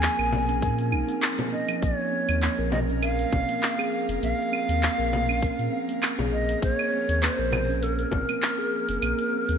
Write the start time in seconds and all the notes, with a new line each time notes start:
Already playing: F3 A#3 G#4 A#4 G#5
0.02 A#3, clap, open hi-hat, cabasa
0.19 A#1 A#4, cabasa, claves
0.33 frame drum
0.49 C#4, open hi-hat, cabasa
0.62 A#2 A#4, kick, open hi-hat, cabasa
0.79 open hi-hat, cabasa
0.92 A#1 D#4, claves
1.08 C4, open hi-hat, cabasa
1.22 clap, open hi-hat, cabasa
1.38 A#3, open hi-hat, frame drum, cabasa
1.52 C#4 D#5
1.68 F3, open hi-hat, cabasa, claves
1.82 A#1 A#3 A#4 C#5, kick, open hi-hat, cabasa
1.99 cabasa
2.12 C4
2.29 D#2, open hi-hat, cabasa, claves
2.42 A#3, clap, open hi-hat, cabasa
2.59 A#1 A#4, cabasa
2.72 D#5, frame drum
2.89 C#4, cabasa
3.03 A#4 F5, open hi-hat, cabasa, claves
3.19 open hi-hat, cabasa
3.32 G#1 C4, kick, frame drum
3.49 A#3, open hi-hat, cabasa
3.63 clap, open hi-hat, cabasa
3.79 G#4, cabasa, claves
4.09 F1, open hi-hat, cabasa
4.23 A#1 A#3 F5, open hi-hat, cabasa
4.40 cabasa
4.52 C4, claves
4.69 D#2, open hi-hat, cabasa
4.82 A#3, clap, open hi-hat, cabasa
4.98 A#1 A#4, cabasa
5.13 frame drum
5.29 C#4, cabasa, claves
5.42 A#4, kick, open hi-hat, cabasa
5.59 A#2, open hi-hat, cabasa
5.72 C4
5.89 A#3, open hi-hat, cabasa
6.03 clap, open hi-hat, cabasa, claves
6.19 A#1 G#4, frame drum, cabasa
6.33 D#5
6.49 open hi-hat, cabasa
6.62 A#1 A#3 C5, kick, open hi-hat, cabasa
6.74 C#5
6.79 cabasa, claves
6.92 C4
7.09 D#2, open hi-hat, cabasa
7.22 A#3 B4, clap, open hi-hat, cabasa
7.35 A#4 C5
7.39 A#1, cabasa
7.52 frame drum, claves
7.69 C#4, cabasa
7.83 A#4, open hi-hat, cabasa
7.99 open hi-hat, cabasa
8.11 G#1 C4, kick, frame drum
8.29 A#3, open hi-hat, cabasa, claves
8.43 clap, open hi-hat, cabasa
8.59 G#4, cabasa
8.89 F1, open hi-hat, cabasa
9.02 A#1 A#3, open hi-hat, cabasa, claves
9.19 open hi-hat, cabasa
9.33 C4
9.49 D#2, open hi-hat, cabasa